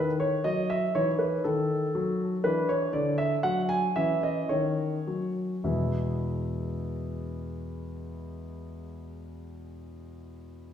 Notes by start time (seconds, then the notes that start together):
Already playing: D#3 E4
0.20 C#5
0.44 F#3 D#5
0.70 E5
0.95 E3 D#4 C#5
1.19 B4
1.44 D#3 A4
1.95 F#3
2.44 E3 D4 B4
2.69 C#5
2.93 D3 D5
3.18 E5
3.43 F#3 F#5
3.69 G#5
3.96 E3 C#4 E5
4.23 D#5
4.49 D#3 C#5
5.07 F#3
5.64 E2 B2 G#3 B3 E4 G#4 E5